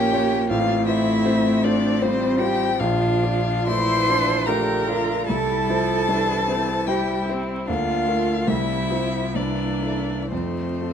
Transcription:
0.00 0.52 A#1 medium
0.00 0.51 A#3 medium
0.00 0.52 A#3 medium
0.00 0.47 C#4 medium
0.00 0.13 F4 medium
0.00 0.49 G4 medium
0.00 0.13 C#5 medium
0.00 0.49 G5 medium
0.13 0.46 F4 soft
0.13 0.46 C#5 medium
0.50 0.86 A1 medium
0.50 2.04 A3 medium
0.50 2.82 C4 medium
0.50 0.89 F4 medium
0.50 0.87 F5 medium
0.87 1.65 E4 medium
0.87 1.22 F4 medium
0.87 1.22 C5 medium
0.87 1.65 E5 medium
1.25 1.60 C4 soft
1.25 1.60 F4 medium
1.25 1.60 C5 medium
1.63 2.02 D4 medium
1.63 1.98 F4 soft
1.63 1.99 C5 medium
1.63 2.04 D5 medium
2.01 2.80 G3 medium
2.01 2.41 C4 medium
2.01 2.37 C4 medium
2.01 2.37 F4 soft
2.01 2.39 C5 medium
2.01 2.37 C5 medium
2.40 2.76 F4 medium
2.40 2.79 G4 medium
2.40 2.76 C5 medium
2.40 2.82 G5 medium
2.80 3.22 A#1 medium
2.80 3.70 F3 medium
2.80 3.70 D4 medium
2.80 3.69 F4 medium
2.80 3.67 F5 medium
3.23 3.63 F4 soft
3.23 3.63 D5 medium
3.67 4.49 E3 medium
3.67 4.04 A3 soft
3.67 4.11 E4 medium
3.67 4.04 F4 soft
3.67 4.48 C5 medium
3.67 4.04 D5 soft
3.67 4.48 C6 loud
4.08 4.47 D4 medium
4.08 4.43 F4 soft
4.08 4.43 D5 soft
4.46 5.28 D3 medium
4.46 4.83 A3 soft
4.46 4.83 F4 soft
4.46 4.89 G4 medium
4.46 5.27 A#4 medium
4.46 4.84 D5 soft
4.46 5.26 A#5 medium
4.88 5.29 F4 medium
4.88 5.25 F4 soft
4.88 5.25 D5 medium
5.27 5.68 C2 medium
5.27 5.71 G3 medium
5.27 6.09 E4 medium
5.27 6.84 A4 medium
5.27 6.89 A5 medium
5.69 6.10 F3 medium
5.69 6.05 E4 soft
5.69 6.05 C5 soft
6.08 6.89 E3 medium
6.08 6.44 G3 soft
6.08 6.46 D4 medium
6.08 6.44 E4 soft
6.08 6.44 C5 soft
6.47 6.86 C4 medium
6.47 6.84 E4 soft
6.47 6.84 C5 soft
6.87 7.24 G3 soft
6.87 7.28 G3 medium
6.87 7.24 E4 soft
6.87 7.69 E4 medium
6.87 7.28 G4 medium
6.87 7.24 C5 soft
6.87 7.28 G5 medium
7.28 7.70 C4 medium
7.28 7.64 E4 soft
7.28 7.65 C5 soft
7.68 8.07 D2 medium
7.68 8.09 A#3 medium
7.68 8.48 D4 soft
7.68 8.51 F4 medium
7.68 8.49 F5 medium
8.07 8.50 A3 medium
8.07 8.44 F4 soft
8.07 8.44 A#4 soft
8.46 8.89 C2 soft
8.46 8.92 G3 medium
8.46 9.37 C4 soft
8.46 9.38 E4 medium
8.46 9.37 E5 medium
8.91 9.38 F3 soft
8.91 9.32 F4 soft
8.91 9.32 C5 soft
9.35 9.81 C2 soft
9.35 10.33 E3 soft
9.35 10.31 A#3 soft
9.35 10.32 D4 medium
9.35 10.31 D5 medium
9.82 10.27 E4 soft
9.82 10.27 A4 soft
10.31 10.81 F2 soft
10.31 10.93 F3 soft
10.31 10.93 A3 soft
10.31 10.93 C4 soft
10.31 10.93 C5 medium
10.82 10.93 F4 soft
10.82 10.93 A4 soft

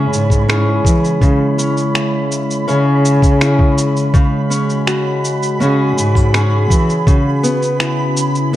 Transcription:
0.00 1.20 C#3 medium
0.00 4.14 C#3 medium
0.00 4.13 G#3 medium
0.00 0.48 C#4 medium
0.00 0.48 E4 medium
0.00 5.32 E4 medium
0.00 0.49 G#4 medium
0.00 5.32 C#5 medium
0.00 8.56 B5 medium
0.12 0.79 G#2 medium
0.12 shaker medium
0.30 kick medium
0.30 shaker soft
0.48 1.58 C#4 medium
0.48 1.93 E4 soft
0.48 2.68 G#4 medium
0.48 finger snap medium
0.48 shaker soft
0.84 0.99 E3 medium
0.84 kick medium
0.84 shaker medium
1.05 shaker soft
1.21 1.36 C#3 medium
1.21 4.12 C#3 medium
1.21 kick loud
1.21 shaker soft
1.58 2.67 C#4 medium
1.58 shaker medium
1.77 shaker soft
1.95 2.67 E4 medium
1.95 finger snap loud
1.95 shaker soft
2.32 shaker medium
2.51 shaker soft
2.68 4.08 C#3 loud
2.68 3.40 C#4 medium
2.68 3.40 E4 medium
2.68 3.41 G#4 medium
2.68 shaker soft
3.05 shaker medium
3.22 kick loud
3.22 shaker soft
3.41 4.50 C#4 medium
3.41 4.22 E4 medium
3.41 4.90 G#4 medium
3.41 finger snap loud
3.41 shaker soft
3.59 kick loud
3.78 shaker medium
3.97 shaker soft
4.14 7.06 C#3 medium
4.14 7.08 G#3 medium
4.14 kick loud
4.14 shaker soft
4.44 8.24 F#4 medium
4.50 5.59 C#4 medium
4.50 8.56 G#5 medium
4.50 shaker medium
4.70 shaker soft
4.87 5.60 F#4 medium
4.87 finger snap medium
4.87 shaker soft
5.24 shaker medium
5.43 shaker soft
5.60 5.89 C#3 loud
5.60 6.33 C#4 medium
5.60 6.33 F#4 medium
5.60 6.35 G#4 medium
5.60 shaker soft
5.97 6.64 G#2 medium
5.97 shaker medium
6.15 kick medium
6.15 shaker soft
6.34 7.15 C#4 medium
6.34 7.15 F#4 medium
6.34 8.54 G#4 medium
6.34 finger snap medium
6.34 shaker soft
6.70 6.85 E3 medium
6.70 kick loud
6.70 shaker medium
6.90 shaker soft
7.06 8.56 C#3 medium
7.06 7.22 C#3 medium
7.06 kick loud
7.06 shaker soft
7.43 8.52 B3 medium
7.43 shaker medium
7.58 8.56 C#4 medium
7.62 shaker soft
7.80 8.53 E4 medium
7.80 finger snap medium
7.80 shaker soft
8.17 shaker medium
8.27 8.56 E4 medium
8.35 shaker soft

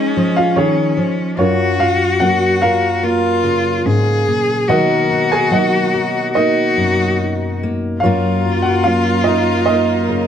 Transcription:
0.00 0.15 F3 medium
0.00 1.37 F3 medium
0.00 1.46 G#3 medium
0.00 1.33 C#4 medium
0.00 1.40 C#4 medium
0.00 0.32 D#4 medium
0.00 0.55 D#4 medium
0.00 1.47 F4 medium
0.00 0.32 G#4 medium
0.00 1.33 G#4 medium
0.00 0.37 D#5 medium
0.16 0.96 F3 medium
0.36 0.56 F4 medium
0.36 0.57 F5 medium
0.56 0.97 D#3 medium
0.56 1.14 C#4 medium
0.56 1.47 D#4 medium
0.56 1.14 G#4 medium
0.56 1.13 C#5 medium
0.97 1.38 F3 medium
1.37 3.84 F#2 medium
1.37 1.77 C#4 medium
1.37 1.77 F4 soft
1.37 3.05 F#4 loud
1.37 1.77 A#4 medium
1.37 1.80 C#5 medium
1.79 3.02 F4 medium
1.79 2.19 F4 medium
1.79 2.18 F5 medium
2.20 4.69 F#3 medium
2.20 3.01 A#3 medium
2.20 3.84 C#4 medium
2.20 2.59 F#4 medium
2.20 2.62 F#5 medium
2.62 4.23 F4 medium
2.62 4.71 A#4 medium
2.62 4.23 A#4 medium
2.62 4.23 F5 medium
3.03 4.77 A#3 medium
3.03 4.64 F4 medium
3.03 3.87 F4 loud
3.43 4.63 C#3 medium
3.85 4.26 G#2 medium
3.85 4.77 C#4 medium
3.85 4.70 G#4 loud
4.27 4.68 A#2 medium
4.68 8.01 B2 medium
4.68 8.01 D#3 medium
4.68 5.50 F#3 medium
4.68 7.60 A#3 medium
4.68 5.09 D#4 medium
4.68 6.33 F#4 loud
4.68 5.27 F#4 medium
4.68 5.27 A#4 medium
4.68 5.94 A#4 medium
4.68 5.27 D#5 medium
4.68 5.33 F#5 medium
5.10 6.34 D#4 soft
5.32 5.51 G#4 medium
5.32 5.50 G#5 medium
5.51 7.96 F#3 medium
5.51 6.34 A#3 soft
5.51 7.17 D#4 medium
5.51 6.31 F#4 medium
5.51 8.10 F#4 medium
5.51 6.31 D#5 medium
5.51 6.37 F#5 medium
5.94 7.97 A#4 medium
6.34 8.10 A#3 medium
6.34 7.56 D#4 medium
6.34 7.97 D#4 medium
6.34 7.55 F#4 medium
6.34 7.56 F#4 medium
6.34 7.56 A#4 soft
6.34 7.56 D#5 medium
6.76 8.01 F#2 medium
7.18 8.10 D#4 medium
7.63 7.98 A#3 medium
8.00 10.27 F#2 medium
8.00 10.27 C#3 medium
8.00 10.27 F#3 medium
8.00 8.84 F#3 medium
8.00 10.27 A#3 medium
8.00 10.27 F4 medium
8.00 8.60 F4 medium
8.00 10.27 A#4 medium
8.00 8.60 A#4 soft
8.00 8.60 C#5 medium
8.00 8.65 F5 medium
8.00 10.27 F5 medium
8.05 10.27 A#3 medium
8.05 8.45 F4 medium
8.05 9.26 A#4 medium
8.45 10.27 F4 soft
8.62 8.84 F#4 medium
8.62 8.82 F#5 medium
8.84 10.27 F#3 medium
8.84 9.66 A#3 medium
8.84 10.27 C#4 medium
8.84 9.24 F4 medium
8.84 9.27 F5 medium
9.24 9.64 D#4 medium
9.24 10.27 A#4 medium
9.24 9.63 D#5 medium
9.66 10.27 A#3 medium
9.66 10.26 D#4 medium
9.66 10.26 A#4 medium
9.66 10.27 D#5 medium
10.09 10.27 C#3 medium

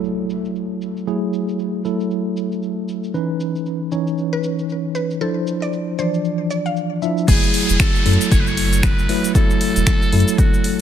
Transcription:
0.00 1.05 F#3 medium
0.00 1.05 A3 medium
0.00 1.05 E4 medium
0.00 1.05 A4 medium
0.00 impact medium
0.04 shaker soft
0.30 shaker medium
0.45 shaker soft
0.56 shaker soft
0.82 shaker medium
0.97 shaker soft
1.07 1.82 F#3 medium
1.07 1.82 A3 medium
1.07 1.82 E4 medium
1.07 1.82 G#4 medium
1.07 shaker soft
1.33 shaker medium
1.49 shaker soft
1.59 shaker soft
1.85 3.12 F#3 medium
1.85 3.12 A3 medium
1.85 3.12 E4 medium
1.85 3.12 A4 medium
1.85 shaker medium
2.00 shaker soft
2.11 shaker soft
2.37 shaker medium
2.52 shaker soft
2.63 shaker soft
2.88 shaker medium
3.04 shaker soft
3.14 3.89 E3 medium
3.14 3.89 C#4 medium
3.14 3.89 D#4 medium
3.14 3.89 B4 loud
3.14 shaker soft
3.40 shaker medium
3.55 shaker soft
3.66 shaker soft
3.92 5.19 E3 medium
3.92 5.19 C#4 medium
3.92 5.19 D#4 medium
3.92 5.19 C#5 medium
3.92 shaker medium
4.07 shaker soft
4.18 shaker soft
4.33 4.53 B4 loud
4.44 shaker medium
4.59 shaker soft
4.69 shaker soft
4.95 5.17 B4 medium
4.95 shaker medium
5.11 shaker soft
5.21 5.96 F3 medium
5.21 5.96 D4 medium
5.21 5.96 E4 medium
5.21 5.43 A4 medium
5.21 5.96 C5 loud
5.21 shaker soft
5.47 shaker medium
5.62 5.82 D5 medium
5.62 shaker soft
5.73 shaker soft
5.99 7.00 E3 medium
5.99 7.00 F3 medium
5.99 7.00 D4 medium
5.99 6.21 C5 medium
5.99 7.00 D5 medium
5.99 shaker medium
6.14 shaker soft
6.25 shaker soft
6.50 6.63 D5 medium
6.50 shaker medium
6.66 7.17 F5 medium
6.66 shaker soft
6.77 shaker soft
7.02 7.25 F3 medium
7.02 7.25 D4 medium
7.02 7.25 E4 medium
7.02 7.25 E5 loud
7.02 shaker medium
7.18 shaker soft
7.28 7.39 F#1 loud
7.28 8.03 F#3 medium
7.28 8.03 A3 medium
7.28 8.03 E4 medium
7.28 8.03 G#4 loud
7.28 7.76 G#4 loud
7.28 kick loud
7.28 closed hi-hat medium
7.28 crash loud
7.28 downlifter medium
7.28 shaker medium
7.44 shaker soft
7.54 open hi-hat loud
7.69 7.77 E1 loud
7.69 closed hi-hat medium
7.69 shaker medium
7.80 8.28 A4 loud
7.80 finger snap loud
7.80 kick loud
7.80 closed hi-hat medium
7.80 shaker medium
7.95 shaker soft
8.06 8.17 F#2 medium
8.06 9.07 F#3 medium
8.06 9.07 A3 medium
8.06 9.07 E4 medium
8.06 9.07 A4 loud
8.06 open hi-hat loud
8.13 closed hi-hat medium
8.21 closed hi-hat medium
8.21 shaker medium
8.32 8.92 F#1 medium
8.32 8.41 C#5 loud
8.32 kick loud
8.32 closed hi-hat medium
8.32 shaker medium
8.40 8.49 B4 loud
8.47 8.85 C#5 loud
8.47 shaker soft
8.57 open hi-hat loud
8.73 closed hi-hat medium
8.73 shaker medium
8.83 9.34 B4 loud
8.83 finger snap loud
8.83 kick loud
8.83 closed hi-hat medium
8.83 shaker medium
8.98 9.06 F#1 loud
8.98 shaker soft
9.09 9.32 F#3 loud
9.09 9.32 A3 medium
9.09 9.32 E4 medium
9.09 9.32 B4 loud
9.09 open hi-hat loud
9.24 closed hi-hat medium
9.24 shaker medium
9.35 10.10 F#3 medium
9.35 10.10 A3 medium
9.35 10.10 E4 medium
9.35 10.40 A4 loud
9.35 10.10 A4 loud
9.35 kick loud
9.35 closed hi-hat medium
9.35 shaker medium
9.50 shaker soft
9.61 open hi-hat loud
9.76 9.84 E1 medium
9.76 closed hi-hat medium
9.76 shaker medium
9.87 finger snap loud
9.87 kick loud
9.87 closed hi-hat medium
9.87 shaker medium
10.02 shaker soft
10.12 10.24 F#2 medium
10.12 10.81 F#3 medium
10.12 10.81 A3 medium
10.12 10.81 E4 medium
10.12 10.81 A4 loud
10.12 open hi-hat loud
10.20 closed hi-hat medium
10.28 closed hi-hat medium
10.28 shaker medium
10.38 10.79 F#4 loud
10.38 kick loud
10.38 closed hi-hat medium
10.38 shaker medium
10.54 shaker soft
10.64 open hi-hat loud

